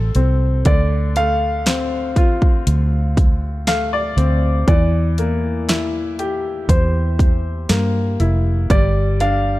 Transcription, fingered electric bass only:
0.00 0.12 A1 medium
0.15 0.62 C2 medium
0.66 2.63 D2 medium
2.67 4.13 D2 medium
4.17 4.64 D2 medium
4.68 6.65 E2 loud
6.69 7.65 E2 medium
7.70 8.16 G2 medium
8.20 8.67 F1 medium
8.70 9.60 G1 loud

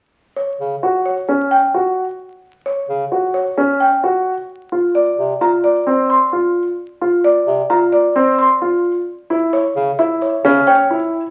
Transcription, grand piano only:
0.83 1.13 F#4 soft
1.29 1.58 C#4 medium
1.74 2.04 F#4 soft
3.12 3.42 F#4 soft
3.58 3.87 C#4 medium
4.04 4.33 F#4 soft
4.72 5.02 F4 soft
5.41 5.71 F4 soft
5.87 6.16 C4 medium
6.33 6.62 F4 soft
7.01 7.31 F4 medium
7.70 8.00 F4 medium
8.16 8.45 C4 medium
8.62 8.91 F4 medium
9.30 9.60 E4 medium
9.99 10.29 E4 medium
10.45 10.74 C#4 medium
10.67 10.97 C#5 medium
10.90 11.20 E4 medium

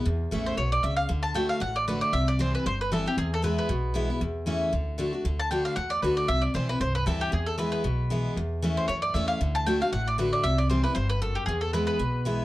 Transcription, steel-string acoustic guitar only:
0.05 0.55 E2 loud
0.31 0.56 E3 medium
0.31 0.57 A3 loud
0.31 0.57 C#4 medium
0.31 0.57 E4 loud
0.58 0.82 B2 medium
0.84 1.08 C#3 medium
1.09 1.33 D3 medium
1.34 1.60 D3 medium
1.34 1.60 A3 medium
1.34 1.61 D4 medium
1.34 1.61 F#4 medium
1.60 2.10 A2 medium
1.88 2.12 D3 medium
1.88 2.12 A3 medium
1.88 2.13 D4 loud
1.88 2.13 F#4 medium
2.13 2.63 C3 medium
2.39 2.64 E3 medium
2.39 2.64 G3 medium
2.39 2.64 C4 medium
2.39 2.65 E4 medium
2.66 3.15 G2 medium
2.92 3.05 E3 medium
2.92 3.05 G3 medium
2.92 3.06 C4 medium
2.92 3.05 E4 loud
3.06 3.18 C4 medium
3.06 3.17 E4 medium
3.18 3.67 E2 medium
3.42 3.68 E3 medium
3.42 3.68 G#3 medium
3.42 3.68 B3 medium
3.42 3.69 E4 loud
3.69 4.19 B2 medium
3.94 4.08 E3 medium
3.94 4.09 G#3 medium
3.94 4.09 B3 loud
3.94 4.09 E4 loud
4.10 4.21 B3 soft
4.10 4.21 E4 medium
4.21 4.71 E2 medium
4.46 4.71 E3 medium
4.46 4.72 A3 medium
4.46 4.72 C#4 loud
4.46 4.72 E4 medium
4.73 4.97 D3 medium
4.98 5.12 D3 medium
4.98 5.12 A3 medium
4.98 5.13 D4 medium
4.98 5.12 F#4 medium
5.13 5.25 D4 soft
5.13 5.24 F#4 medium
5.25 5.50 D3 medium
5.51 5.76 D3 medium
5.51 5.76 A3 medium
5.51 5.76 D4 loud
5.51 5.76 F#4 medium
5.76 6.26 A2 medium
6.03 6.27 D3 medium
6.03 6.28 A3 medium
6.03 6.28 D4 medium
6.03 6.28 F#4 loud
6.29 6.78 C3 medium
6.54 6.68 E3 medium
6.54 6.68 G3 medium
6.54 6.69 C4 medium
6.54 6.68 E4 loud
6.69 6.81 C4 soft
6.69 6.80 E4 medium
6.81 7.30 G2 medium
7.06 7.31 E3 medium
7.06 7.31 G3 medium
7.06 7.32 C4 loud
7.06 7.32 E4 loud
7.32 7.82 E2 medium
7.58 7.83 E3 medium
7.58 7.83 G#3 medium
7.58 7.83 B3 medium
7.58 7.84 E4 loud
7.84 8.34 B2 medium
8.10 8.35 E3 medium
8.10 8.35 G#3 medium
8.10 8.36 B3 medium
8.10 8.36 E4 medium
8.37 8.86 E2 medium
8.62 8.87 E3 medium
8.62 8.88 A3 medium
8.62 8.88 C#4 medium
8.62 8.88 E4 loud
8.89 9.13 E3 medium
9.15 9.39 E3 medium
9.15 9.39 A3 loud
9.15 9.40 C#4 medium
9.15 9.40 E4 loud
9.41 9.65 D3 loud
9.67 9.80 D3 medium
9.67 9.80 A3 loud
9.67 9.81 D4 medium
9.67 9.80 F#4 loud
9.81 9.93 D4 medium
9.81 9.92 F#4 medium
9.93 10.42 A2 medium
10.18 10.43 D3 medium
10.18 10.43 A3 medium
10.18 10.43 D4 loud
10.18 10.44 F#4 medium
10.44 10.93 C3 medium
10.69 10.83 E3 medium
10.69 10.84 G3 medium
10.69 10.84 C4 medium
10.69 10.83 E4 medium
10.84 10.96 C4 soft
10.84 10.95 E4 medium
10.96 11.20 G2 medium
11.22 11.46 F#2 medium
11.48 11.98 E2 loud
11.73 11.98 E3 medium
11.73 11.99 G#3 loud
11.73 11.99 B3 medium
11.73 11.99 E4 medium
11.99 12.45 B2 medium
12.25 12.45 E3 medium
12.25 12.45 G#3 medium
12.25 12.45 B3 medium
12.25 12.45 E4 loud

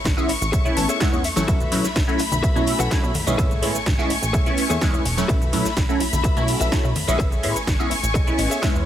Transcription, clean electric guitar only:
0.29 muted clean electric guitar stroke soft
0.52 0.71 G#4 medium
0.52 0.71 A4 medium
0.52 0.71 C#5 medium
0.52 0.71 E5 loud
0.77 0.89 A5 medium
0.88 1.00 G#4 medium
0.88 1.01 A4 medium
0.88 1.01 C#5 medium
0.88 1.00 E5 loud
1.01 1.23 F#5 medium
1.13 muted clean electric guitar stroke medium
1.24 1.27 E5 medium
1.24 muted clean electric guitar stroke soft
1.48 1.84 F#4 loud
1.48 1.84 A4 loud
1.48 1.85 B4 medium
1.48 1.85 E5 loud
2.19 muted clean electric guitar stroke soft
2.43 2.61 F#4 medium
2.43 2.61 A4 medium
2.43 2.62 B4 medium
2.43 2.62 E5 loud
2.79 2.91 F#4 medium
2.79 2.91 A4 medium
2.79 2.91 B4 medium
2.79 2.91 F#5 medium
3.03 muted clean electric guitar stroke medium
3.14 muted clean electric guitar stroke soft
3.38 3.75 G#4 loud
3.38 3.75 A4 medium
3.38 3.75 C#5 loud
3.38 3.75 E5 loud
4.10 muted clean electric guitar stroke soft
4.33 4.52 G#4 medium
4.33 4.52 A4 medium
4.33 4.52 C#5 medium
4.33 4.52 E5 medium
4.70 4.81 G#4 medium
4.70 4.82 A4 medium
4.70 4.82 C#5 medium
4.70 4.82 E5 medium
4.93 muted clean electric guitar stroke medium
5.05 muted clean electric guitar stroke soft
5.28 5.65 F#4 loud
5.28 5.65 A4 loud
5.28 5.65 B4 loud
5.28 5.66 E5 loud
6.00 muted clean electric guitar stroke soft
6.24 6.42 F#4 medium
6.24 6.42 A4 medium
6.24 6.43 B4 medium
6.24 6.43 E5 medium
6.60 6.72 F#4 medium
6.60 6.72 A4 medium
6.60 6.72 B4 medium
6.60 6.72 E5 medium
6.83 muted clean electric guitar stroke medium
6.95 muted clean electric guitar stroke soft
7.19 7.55 G#4 loud
7.19 7.56 A4 loud
7.19 7.56 C#5 loud
7.19 7.56 E5 loud
7.90 muted clean electric guitar stroke soft
8.14 8.33 G#4 medium
8.14 8.33 A4 medium
8.14 8.33 C#5 medium
8.14 8.33 D#5 medium
8.39 8.50 D#5 medium
8.50 8.62 G#4 medium
8.50 8.62 A4 medium
8.50 8.62 C#5 medium
8.50 8.61 E5 loud
8.74 muted clean electric guitar stroke medium

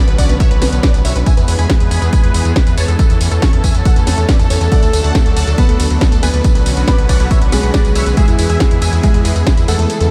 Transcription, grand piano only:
4.72 5.49 A3 medium
4.72 5.49 A4 loud
5.58 6.14 B3 medium
5.58 6.14 B4 medium
6.23 6.79 B3 medium
6.23 6.79 B4 medium
6.88 7.44 B3 medium
6.88 7.44 B4 loud
7.52 8.08 G#3 medium
7.52 8.08 G#4 medium
8.17 8.95 G#3 medium
8.17 8.95 G#4 loud
9.04 9.60 G#3 medium
9.04 9.60 G#4 loud
9.68 10.11 A3 medium
9.68 10.11 A4 medium

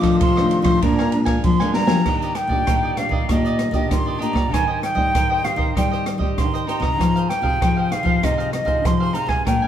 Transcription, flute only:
0.00 0.17 D6 loud
0.22 0.60 C6 medium
0.64 0.82 C6 medium
0.84 1.19 A#5 medium
1.44 1.73 C6 medium
1.74 2.38 A#5 loud
2.36 2.99 G5 medium
2.98 3.29 F5 medium
3.30 3.93 D#5 medium
3.92 4.21 C6 medium
4.22 4.55 A#5 medium
4.53 4.82 G#5 medium
4.83 5.46 G5 medium
5.45 5.76 F5 medium
5.77 6.09 G5 medium
6.39 6.69 C6 medium
6.68 7.31 A#5 medium
7.29 7.93 G5 medium
7.92 8.26 F5 medium
8.24 8.53 D#5 medium
8.54 8.88 D#5 medium
8.86 9.16 C6 medium
9.14 9.30 A#5 medium
9.29 9.46 G#5 medium
9.47 9.68 G5 medium

